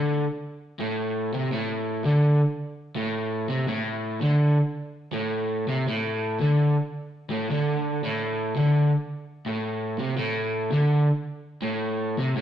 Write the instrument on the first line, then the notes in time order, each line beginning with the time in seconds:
overdriven electric guitar
Already playing: D3
0.79 A2
1.34 C3
1.52 A2
2.05 D3
2.96 A2
3.49 C3
3.68 A2
4.21 D3
5.13 A2
5.68 C3
5.87 A2
6.40 D3
7.30 A2
7.50 D3
8.04 A2
8.56 D3
9.46 A2
9.99 C3
10.17 A2
10.71 D3
11.62 A2
12.18 C3
12.35 A2